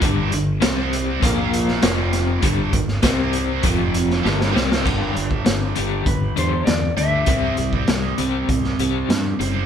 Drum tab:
CC |----------------|----------------|x---------------|----------------|
HH |x-x-x-x-x-x-x-x-|x-x-x-x-x-x-----|--x-x-x-x-x-x-x-|x-x-x-x-x-x-x-x-|
SD |----o------oo-o-|---oo------ooooo|----o-------o---|----o----o--o---|
BD |o-------o-------|o-o-o---o-------|o--o----o-------|o--o----o-------|